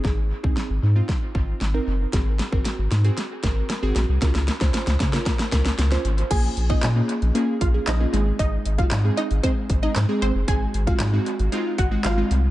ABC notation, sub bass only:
X:1
M:4/4
L:1/16
Q:1/4=115
K:Abmix
V:1 name="Sub bass" clef=bass
A,,,3 C,, z A,,, A,,2 z2 A,,,2 A,,,2 G,,,2 | A,,,3 A,,, z A,,, A,,2 z2 A,,,2 z A,,, B,,, C,, | D,,3 D,, z D,, D,2 z2 D,,2 D,,2 A,,,2 | B,,,2 B,,,2 B,,2 z B,,, z2 B,,,2 B,,,2 A,,,2 |
A,,,2 A,,,2 A,,2 z A,,, z2 A,,,2 A,, z A,,, G,,, | A,,,2 A,,,2 A,,2 z A,,, z2 A,,,2 A,,,2 C,,2 |]